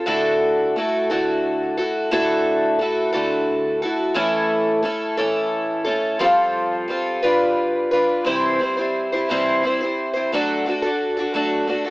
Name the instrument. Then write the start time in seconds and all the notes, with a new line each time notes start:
twelve-string acoustic guitar
0.06 D3 A3 E4 F#4 A4
0.76 A3 E4 F#4 A4
1.10 D3 A3 E4 F#4 A4
1.78 E4 F#4 A4
2.11 D3 A3 E4 F#4 A4
2.79 A3 E4 F#4 A4
3.13 D3 A3 E4 F#4 A4
3.82 E4 F#4 A4
4.14 A2 E3 A3 C#4 E4 A4
4.82 A3 C#4 E4 A4
5.17 A2 E3 A3 C#4 E4 A4
5.85 A3 C#4 E4 A4
6.19 F3 G3 C4 F4 A4
6.88 G3 C4 F4 A4
7.23 G3 D4 F4 B4
7.91 D4 F4 B4
8.24 C3 E3 G3 C4 E4 C5
8.59 G3 C4 E4 C5
8.77 G3 C4 E4 C5
9.12 G3 C4 E4 C5
9.29 C3 E3 G3 C4 E4 C5
9.63 G3 C4 E4 C5
9.80 C4 E4 C5
9.85 G3
10.13 G3 C4 E4 C5
10.32 F#3 A3 D4 F#4 A4
10.66 A3 D4 F#4 A4
10.82 D4 F#4 A4
11.17 D4 F#4 A4
11.34 F#3 A3 D4 F#4 A4
11.67 A3 D4 F#4 A4
11.85 F#4 A4